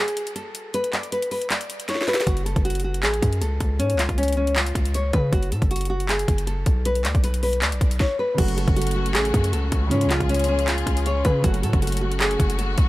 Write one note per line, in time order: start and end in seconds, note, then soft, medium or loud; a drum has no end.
0.00 0.33 G#4 medium
0.08 closed hi-hat medium
0.17 closed hi-hat medium
0.27 closed hi-hat medium
0.36 0.72 A4 medium
0.36 closed hi-hat medium
0.55 closed hi-hat medium
0.74 0.92 B4 loud
0.74 closed hi-hat medium
0.84 closed hi-hat medium
0.93 1.11 D5 medium
0.93 clap medium
0.93 closed hi-hat medium
1.03 closed hi-hat soft
1.12 1.30 B4 medium
1.12 closed hi-hat medium
1.22 closed hi-hat medium
1.31 1.49 B4 medium
1.31 open hi-hat medium
1.42 closed hi-hat medium
1.50 1.86 D5 medium
1.50 clap loud
1.50 closed hi-hat medium
1.61 closed hi-hat medium
1.70 closed hi-hat medium
1.80 closed hi-hat medium
1.89 2.07 C#5 medium
1.89 snare medium
1.89 closed hi-hat medium
1.95 snare medium
2.01 snare medium
2.08 2.26 B4 medium
2.08 snare medium
2.08 closed hi-hat soft
2.14 snare loud
2.14 closed hi-hat medium
2.20 snare medium
2.20 closed hi-hat medium
2.27 2.55 F#1 loud
2.27 2.45 F#4 medium
2.27 kick loud
2.27 closed hi-hat medium
2.37 closed hi-hat medium
2.46 2.64 A4 medium
2.46 closed hi-hat medium
2.56 3.05 F#1 loud
2.56 kick loud
2.56 closed hi-hat soft
2.65 2.83 F#4 medium
2.65 closed hi-hat medium
2.70 closed hi-hat medium
2.75 closed hi-hat medium
2.80 closed hi-hat medium
2.84 3.02 F#4 medium
2.94 closed hi-hat medium
3.03 3.21 A1 loud
3.03 3.39 G#4 medium
3.03 clap loud
3.03 closed hi-hat medium
3.14 closed hi-hat medium
3.22 3.43 F#2 loud
3.22 kick loud
3.22 closed hi-hat loud
3.33 closed hi-hat medium
3.41 3.60 C#2 loud
3.41 3.77 A4 medium
3.41 closed hi-hat medium
3.60 3.81 C#2 loud
3.60 kick medium
3.60 closed hi-hat medium
3.79 3.96 G#2 loud
3.79 3.97 C#4 medium
3.79 closed hi-hat medium
3.90 closed hi-hat medium
3.94 4.08 C#2 loud
3.99 4.17 F4 medium
3.99 clap medium
3.99 closed hi-hat medium
4.09 4.73 C#2 loud
4.09 kick loud
4.09 closed hi-hat soft
4.18 4.36 C#4 medium
4.18 closed hi-hat medium
4.23 closed hi-hat medium
4.28 closed hi-hat medium
4.33 closed hi-hat medium
4.37 4.55 C#4 medium
4.47 closed hi-hat medium
4.56 4.92 F4 medium
4.56 clap loud
4.56 closed hi-hat medium
4.66 closed hi-hat medium
4.75 5.12 C#2 loud
4.75 kick loud
4.75 closed hi-hat medium
4.85 closed hi-hat medium
4.94 5.13 C#5 medium
4.94 closed hi-hat medium
5.13 5.32 C#3 loud
5.13 5.31 B4 medium
5.13 kick medium
5.13 closed hi-hat medium
5.33 5.53 F#1 loud
5.33 5.50 F#4 medium
5.33 kick loud
5.33 closed hi-hat medium
5.43 closed hi-hat medium
5.52 5.61 A2 loud
5.52 5.70 A4 medium
5.52 closed hi-hat medium
5.62 6.25 F#1 loud
5.62 kick loud
5.62 closed hi-hat soft
5.71 5.89 F#4 medium
5.71 closed hi-hat medium
5.76 closed hi-hat medium
5.81 closed hi-hat medium
5.85 closed hi-hat medium
5.90 6.08 F#4 medium
6.00 closed hi-hat medium
6.09 6.45 G#4 medium
6.09 clap loud
6.09 closed hi-hat medium
6.19 closed hi-hat medium
6.28 6.65 F#1 loud
6.28 kick loud
6.28 closed hi-hat medium
6.38 closed hi-hat medium
6.47 6.83 A4 medium
6.47 closed hi-hat medium
6.66 7.06 B1 loud
6.66 kick medium
6.66 closed hi-hat medium
6.85 7.03 B4 loud
6.85 closed hi-hat loud
6.95 closed hi-hat medium
7.05 7.14 D2 loud
7.05 7.23 D5 medium
7.05 clap medium
7.05 closed hi-hat medium
7.15 7.63 B1 loud
7.15 kick loud
7.15 closed hi-hat soft
7.24 7.42 B4 medium
7.24 closed hi-hat medium
7.34 closed hi-hat medium
7.43 7.61 B4 medium
7.43 open hi-hat medium
7.53 closed hi-hat medium
7.62 7.74 D2 loud
7.62 7.98 D5 medium
7.62 clap loud
7.62 closed hi-hat medium
7.72 7.81 B1 loud
7.72 closed hi-hat medium
7.81 7.99 B1 loud
7.81 kick loud
7.81 closed hi-hat medium
7.91 closed hi-hat medium
8.00 8.18 C#5 medium
8.00 kick loud
8.00 snare medium
8.19 8.37 B4 medium
8.34 9.86 C#3 medium
8.34 9.87 F#3 medium
8.38 8.66 F#1 loud
8.38 9.90 A3 medium
8.38 9.89 A3 medium
8.38 9.90 C#4 medium
8.38 9.90 F#4 medium
8.38 8.56 F#4 medium
8.38 kick loud
8.38 closed hi-hat medium
8.38 crash loud
8.42 9.90 F#4 medium
8.48 closed hi-hat medium
8.57 8.75 A4 medium
8.57 closed hi-hat medium
8.68 9.16 F#1 loud
8.68 kick loud
8.68 closed hi-hat soft
8.76 8.94 F#4 medium
8.76 closed hi-hat medium
8.82 closed hi-hat medium
8.87 closed hi-hat medium
8.91 closed hi-hat medium
8.96 9.14 F#4 medium
9.06 closed hi-hat medium
9.15 9.33 A1 loud
9.15 9.51 G#4 loud
9.15 clap loud
9.15 closed hi-hat medium
9.25 closed hi-hat medium
9.34 9.54 F#2 loud
9.34 kick loud
9.34 closed hi-hat loud
9.44 closed hi-hat medium
9.53 9.71 C#2 loud
9.53 9.89 A4 medium
9.53 closed hi-hat medium
9.72 9.93 C#2 loud
9.72 kick loud
9.72 closed hi-hat medium
9.87 11.38 C#3 medium
9.87 11.40 F3 medium
9.87 10.09 C#4 medium
9.91 10.07 G#2 loud
9.91 11.43 C#3 medium
9.91 11.42 G#3 medium
9.91 12.89 C#4 medium
9.91 11.43 F4 medium
9.91 11.43 G#4 medium
9.91 closed hi-hat medium
9.95 11.43 F4 medium
10.01 closed hi-hat medium
10.06 10.20 C#2 loud
10.10 10.28 F4 medium
10.10 clap medium
10.10 closed hi-hat medium
10.20 10.84 C#2 loud
10.20 kick loud
10.20 closed hi-hat soft
10.29 10.47 C#4 medium
10.29 closed hi-hat medium
10.34 closed hi-hat medium
10.39 closed hi-hat medium
10.44 closed hi-hat medium
10.48 10.66 C#4 medium
10.59 closed hi-hat medium
10.67 11.04 F4 medium
10.67 clap loud
10.67 closed hi-hat medium
10.78 closed hi-hat medium
10.87 11.23 C#2 loud
10.87 kick loud
10.87 closed hi-hat loud
10.97 closed hi-hat medium
11.06 11.24 C#5 medium
11.06 closed hi-hat medium
11.25 11.43 C#3 loud
11.25 11.43 B4 medium
11.25 kick loud
11.25 closed hi-hat medium
11.40 12.89 C#3 medium
11.40 12.89 F#3 medium
11.44 11.65 F#1 loud
11.44 12.89 A3 medium
11.44 12.89 F#4 medium
11.44 11.62 F#4 medium
11.44 kick loud
11.44 closed hi-hat loud
11.48 12.89 F#4 medium
11.54 closed hi-hat medium
11.63 11.73 A2 loud
11.63 11.81 A4 medium
11.63 closed hi-hat medium
11.73 12.37 F#1 loud
11.73 kick loud
11.73 closed hi-hat soft
11.82 12.00 F#4 medium
11.82 closed hi-hat medium
11.87 closed hi-hat medium
11.92 closed hi-hat medium
11.97 closed hi-hat medium
12.01 12.19 F#4 medium
12.12 closed hi-hat medium
12.20 12.56 G#4 medium
12.20 clap loud
12.20 closed hi-hat medium
12.31 closed hi-hat medium
12.40 12.76 F#1 loud
12.40 kick loud
12.40 closed hi-hat medium
12.50 closed hi-hat medium
12.58 12.89 A4 medium
12.58 closed hi-hat medium
12.78 12.89 B1 loud
12.78 kick loud
12.78 closed hi-hat medium